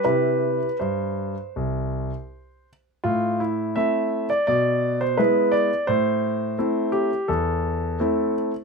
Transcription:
<<
  \new Staff \with { instrumentName = "Grand piano" } { \time 4/4 \key c \major \tempo 4 = 84 b'4 c''2~ c''8 r8 | \key a \minor f'8 e'8 e''8. d''16 d''8. c''16 b'8 d''8 | c''4. g'8 a'4. r8 | }
  \new Staff \with { instrumentName = "Grand piano" } { \time 4/4 \key c \major <c e' g'>4 g,4 c,4 r4 | \key a \minor a,4 <a c' e'>4 b,4 <gis b e'>4 | a,4 <a c' e'>4 e,4 <a c' e'>4 | }
>>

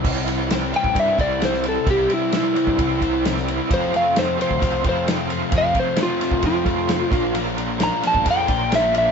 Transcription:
<<
  \new Staff \with { instrumentName = "Electric slide guitar" } { \time 4/4 \key c \mixolydian \tempo 4 = 132 r4. g''8 e''8 d''8 c''8 a'8 | g'8 e'8 e'2 r4 | c''8 f''8 c''8 c''4 c''8 r4 | f''8 c''8 f'4 f'2 |
r4 bes''8 a''8 g''4 e''8 e''8 | }
  \new Staff \with { instrumentName = "Overdriven electric guitar" } { \time 4/4 \key c \mixolydian <c e g c' e'>8 <g c' e'>8 <c e g c' e'>8 <g c' e'>8 <e g c' e'>8 <c e g c' e'>8 <e g c' e'>8 <g c' e'>8 | <c e g c' e'>8 <g c' e'>8 <c e g c' e'>8 <g c' e'>8 <e g c' e'>8 <c e g c' e'>8 <e g c' e'>8 <g c' e'>8 | <f, c f a c' f'>8 <f a c' f'>8 <f, c f a c' f'>8 <f a c' f'>8 <f a c' f'>8 <f, c f a c' f'>8 <f a c' f'>8 <f a c' f'>8 | <f, c f a c' f'>8 <f a c' f'>8 <f, c f a c' f'>8 <f a c' f'>8 <f a c' f'>8 <f, c f a c' f'>8 <f a c' f'>8 <bes, d bes d' f'>8 |
<bes, d bes d' f'>8 <bes d' f'>8 <bes, d bes d' f'>8 <bes d' f'>8 <d bes d' f'>8 <bes, d bes d' f'>8 <d bes d' f'>8 <bes d' f'>8 | }
  \new Staff \with { instrumentName = "Overdriven electric guitar" } { \time 4/4 \key c \mixolydian <c g c' e'>8 <g c' e'>8 <c g c' e'>8 <c g c' e'>8 <c g c' e'>8 <c g c' e'>8 <c g c' e'>8 <g c' e'>8 | <c g c' e'>8 <g c' e'>8 <c g c' e'>8 <c g c' e'>8 <c g c' e'>8 <c g c' e'>8 <c g c' e'>8 <g c' e'>8 | <f, c f a c'>8 <f a c'>8 <c f a c'>8 <f, c f a c'>8 <c f a c'>8 <f, c f a c'>8 <c f a c'>8 <f a c'>8 | <f, c f a c'>8 <f a c'>8 <c f a c'>8 <f, c f a c'>8 <c f a c'>8 <f, c f a c'>8 <c f a c'>8 <bes, f bes d'>8 |
<bes, f bes d'>8 <f bes d'>8 <bes, f bes d'>8 <bes, f bes d'>8 <bes, f bes d'>8 <bes, f bes d'>8 <bes, f bes d'>8 <f bes d'>8 | }
  \new Staff \with { instrumentName = "Picked electric bass" } { \clef bass \time 4/4 \key c \mixolydian c,4.~ c,16 a,,16 g,8 c,4. | c,8 r4 r16 g,16 c,8 c,4. | f,4.~ f,16 d,16 c,8 f,4. | f,8 r4 r16 c,16 f,8 f,4 bes,,8~ |
bes,,4. r16 g,,16 f,8 bes,,4. | }
  \new DrumStaff \with { instrumentName = "Drums" } \drummode { \time 4/4 <cymc bd>8 cymr8 <cymr sn>8 cymr16 bd16 <bd cymr>8 <bd cymr>8 <cymr sn>16 sn16 cymr8 | <bd cymr>8 cymr8 <cymr sn>8 cymr16 bd16 <bd cymr>8 <bd cymr>8 <cymr sn>16 sn16 cymr8 | <bd cymr>8 cymr8 <cymr sn>8 cymr16 bd16 <bd cymr>8 <bd cymr>8 <cymr sn>8 cymr8 | <bd cymr>8 <bd cymr>8 <cymr sn>8 <cymr sn>16 bd16 <bd cymr>8 <bd cymr>8 <cymr sn>8 <bd cymr>8 |
cymr8 cymr8 <cymr sn>8 <cymr sn>16 bd16 <bd cymr>8 <bd cymr>8 <cymr sn>8 cymr8 | }
>>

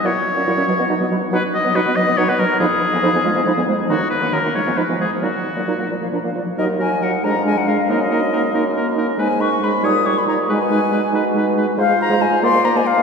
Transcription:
<<
  \new Staff \with { instrumentName = "Flute" } { \time 6/8 \key b \major \tempo 4. = 93 fis''16 r8 e''16 fis''16 e''16 b'16 dis''16 fis''16 dis''16 b'16 r16 | \key ees \minor fis''16 r8 dis''16 fis''16 dis''16 b'16 dis''16 fis''16 dis''16 b'16 r16 | ces'''16 r8 aes''16 ces'''16 aes''16 f''16 aes''16 ces'''16 aes''16 f''16 r16 | bes''16 r8 ges''16 bes''16 ges''16 f''16 aes''16 ces'''16 aes''16 f''16 r16 |
bes''16 r8 ges''16 bes''16 ges''16 d''16 f''16 bes''16 f''16 d''16 r16 | ees''8 aes''8 ges''8 bes''8 aes''16 ges''16 f''8 | ees''2~ ees''8 r8 | aes''8 des'''8 ces'''8 ees'''8 des'''16 ces'''16 bes''8 |
aes''2~ aes''8 r8 | \key f \dorian f''8 bes''8 aes''8 c'''8 bes''16 aes''16 f''8 | }
  \new Staff \with { instrumentName = "Oboe" } { \time 6/8 \key b \major cis''2~ cis''8 r8 | \key ees \minor b'8 dis''8 b'8 dis''8 des''16 b'16 bes'8 | aes'2~ aes'8 r8 | ges'8 ces''8 bes'8 des''8 ces''8 aes'8 |
ges'4. r4. | bes'8 bes'8 bes'8 bes'8 bes'8 bes'8 | bes'8 bes'8 bes'8 bes'8 bes'8 bes'8 | ces''8 ces''8 ces''8 des''8 des''8 des''8 |
ces''8 ces''8 ces''8 ces''8 ces''8 ces''8 | \key f \dorian c''4. d''4. | }
  \new Staff \with { instrumentName = "Clarinet" } { \time 6/8 \key b \major e'16 r8 cis'16 e'16 cis'16 fis16 b16 dis'16 b16 fis16 r16 | \key ees \minor dis'16 r8 b16 dis'16 b16 fis16 b16 dis'16 b16 fis16 r16 | ees'16 r8 ces'16 ees'16 ces'16 aes16 ces'16 ees'16 ces'16 aes16 r16 | ees'16 r8 bes16 ees'16 bes16 aes16 ces'16 ees'16 ces'16 aes16 r16 |
ees'16 r8 bes16 ees'16 bes16 f16 bes16 d'16 bes16 f16 r16 | ees'8 ees'8 ees'8 d'8 d'8 d'8 | ees'8 ees'8 ees'8 ees'8 ees'8 ees'8 | ees'8 ees'8 ees'8 ees'8 ees'8 ees'8 |
ees'8 ees'8 ees'8 ees'8 ees'8 ees'8 | \key f \dorian f'2. | }
  \new Staff \with { instrumentName = "French horn" } { \clef bass \time 6/8 \key b \major fis16 r8 fis16 fis16 fis16 fis16 fis16 fis16 fis16 fis16 r16 | \key ees \minor fis16 r8 fis16 fis16 fis16 fis16 fis16 fis16 fis16 fis16 r16 | f16 r8 f16 f16 f16 f16 f16 f16 f16 f16 r16 | ees16 r8 ees16 ees16 ees16 f16 f16 f16 f16 f16 r16 |
ges16 r8 ges16 ges16 ges16 f16 f16 f16 f16 f16 r16 | ges8 ges8 ges8 aes8 aes8 aes8 | bes8 bes8 bes8 bes8 bes8 bes8 | aes8 aes8 aes8 g8 g8 g8 |
aes8 aes8 aes8 aes8 aes8 aes8 | \key f \dorian aes16 aes16 r16 aes16 aes16 aes16 bes16 bes16 bes16 bes16 r16 bes16 | }
  \new Staff \with { instrumentName = "Bassoon" } { \clef bass \time 6/8 \key b \major ais,16 r8 ais,16 ais,16 ais,16 b,16 b,16 b,16 b,16 b,16 r16 | \key ees \minor b,16 r8 b,16 b,16 b,16 b,16 b,16 b,16 b,16 b,16 r16 | f,16 r8 f,16 f,16 f,16 f,16 f,16 f,16 f,16 f,16 r16 | ges,16 r8 ges,16 ges,16 ges,16 aes,16 aes,16 aes,16 aes,16 aes,16 r16 |
bes,16 r8 bes,16 bes,16 bes,16 bes,16 bes,16 bes,16 bes,16 bes,16 r16 | ees,4~ ees,16 r16 f,4~ f,16 r16 | ges,4~ ges,16 r16 ges,4~ ges,16 r16 | aes,4~ aes,16 r16 bes,4~ bes,16 r16 |
ces4~ ces16 r16 ces4~ ces16 r16 | \key f \dorian aes,16 aes,16 r16 aes,16 aes,16 aes,16 aes,16 aes,16 aes,16 aes,16 r16 aes,16 | }
>>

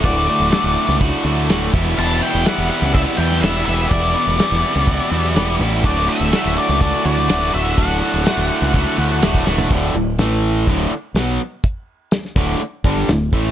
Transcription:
<<
  \new Staff \with { instrumentName = "Lead electric guitar" } { \time 4/4 \key d \major \tempo 4 = 124 d''2 r2 | a''8 g''8 fis''8 fis''8 e''8 g''8 e''8 e''8 | d''2.~ d''8 r8 | d''8 e''4 d''8 d''8 d''4 e''8 |
fis''2. r4 | r1 | r1 | }
  \new Staff \with { instrumentName = "Overdriven electric guitar" } { \clef bass \time 4/4 \key d \major <d, a, d a fis'>8 <d a fis'>8 <a, d a fis'>4 <d, a, d a fis'>8 <d a fis'>8 <a, d a fis'>8 <e, b, e g b e'>8 | <e, b, e g b e'>8 <e g b e'>8 <e g b e'>4 <e, b, e g b e'>8 <e g b e'>8 <e g b e'>8 <e g b e'>8 | <e, b, e g b e'>8 <e g b e'>8 <e g b e'>4 <e, b, e g b e'>8 <e g b e'>8 <e g b e'>8 <e g b e'>8 | <d, a, d a fis'>8 <d a fis'>8 <a, d a fis'>4 <d, a, d a fis'>8 <d a fis'>8 <a, d a fis'>8 <d a fis'>8 |
<d, a, d a fis'>8 <d a fis'>8 <a, d a fis'>4 <d, a, d a fis'>8 <d a fis'>8 <a, d a fis'>8 <d a fis'>8 | <d, a, d>8 <d, a,>8 <a, e a>4 <d, a, d>8 r8 <b, fis b>8 r8 | r4. <d, a, d>8 r8 <g, d g>8 <d, a,>8 <a, e a>8 | }
  \new Staff \with { instrumentName = "Fingered electric bass" } { \clef bass \time 4/4 \key d \major d,,8 r16 d,,16 r16 d,,16 r16 cis,8 r16 d,8 d,,8 e,,8 | e,,8 r16 e,,16 r16 e,,16 r16 cis,8 r16 e,8 e,,8 e,,8 | e,,8 r16 e,,16 r16 e,,16 r16 cis,8 r16 e,8 e,,8 a,,8 | r8. d,,16 r16 d,,16 r16 cis,8 r16 d,8 d,,8 d,,8 |
d,,8 r16 d,,16 r16 d,,16 r16 cis,8 r16 d,8 d,,8 d,,8 | d,,8 d,,8 a,,4 d,,8 r8 b,,8 r8 | r4. d,,8 r8 g,,8 d,,8 a,,8 | }
  \new DrumStaff \with { instrumentName = "Drums" } \drummode { \time 4/4 <bd rb>4 <rb sn>8. sn16 <bd rb>4 <rb sn>8 bd8 | cymc4 <rb sn>8. sn16 <bd rb>8. sn16 <rb sn>4 | <bd rb>4 <rb sn>4 <bd rb>8. sn16 <rb sn>4 | <cymc bd>4 <rb sn>4 <bd rb>8. sn16 <rb sn>16 sn8. |
<bd rb>4 <rb sn>4 <bd rb>4 <rb sn>16 bd16 sn16 tomfh16 | <hh bd>4 <hh sn>4 <hh bd>4 <hh sn>4 | <hh bd>4 <hh sn>16 sn16 bd8 hh8 bd16 sn16 <hh sn>8 bd8 | }
>>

